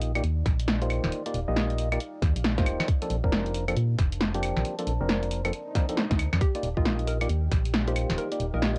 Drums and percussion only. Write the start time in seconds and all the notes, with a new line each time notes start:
0.02 open hi-hat
0.16 closed hi-hat, claves
0.24 closed hi-hat
0.46 kick, snare, open hi-hat
0.60 closed hi-hat
0.68 snare
0.82 closed hi-hat
0.90 open hi-hat, claves
1.04 snare
1.12 closed hi-hat
1.26 closed hi-hat
1.34 open hi-hat
1.56 snare
1.70 closed hi-hat
1.78 open hi-hat
1.92 closed hi-hat, claves
2.00 closed hi-hat
2.22 kick, snare, open hi-hat
2.36 closed hi-hat
2.44 snare
2.58 kick, snare, closed hi-hat
2.66 open hi-hat, claves
2.80 snare, claves
2.88 kick, closed hi-hat
3.02 closed hi-hat
3.10 open hi-hat
3.24 kick
3.32 snare
3.46 closed hi-hat
3.55 open hi-hat
3.68 closed hi-hat, claves
3.77 closed hi-hat
3.99 kick, snare, open hi-hat
4.12 closed hi-hat
4.21 snare
4.34 closed hi-hat
4.43 open hi-hat, claves
4.57 snare
4.65 closed hi-hat
4.79 closed hi-hat
4.87 open hi-hat
5.09 snare
5.23 closed hi-hat
5.31 open hi-hat
5.45 closed hi-hat, claves
5.53 closed hi-hat
5.75 kick, snare, open hi-hat
5.89 closed hi-hat
5.97 snare
6.11 kick, snare, closed hi-hat
6.19 open hi-hat, claves
6.33 snare, claves
6.41 kick, closed hi-hat
6.55 closed hi-hat
6.63 open hi-hat
6.77 kick
6.86 snare
6.99 closed hi-hat
7.08 open hi-hat
7.21 closed hi-hat, claves
7.30 closed hi-hat
7.52 kick, snare, open hi-hat
7.65 closed hi-hat
7.74 snare
7.88 closed hi-hat
7.96 open hi-hat, claves
8.10 snare
8.18 closed hi-hat
8.32 closed hi-hat
8.40 open hi-hat
8.62 snare